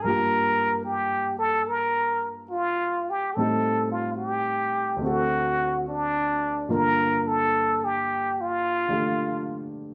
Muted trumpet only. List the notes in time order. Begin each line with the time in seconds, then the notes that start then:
0.02 A#4
0.85 G4
1.38 A4
1.68 A#4
2.50 F4
3.10 G4
3.35 A4
3.92 F4
4.17 G4
5.04 F#4
5.89 D4
6.71 A#4
7.28 A4
7.84 G4
8.41 F4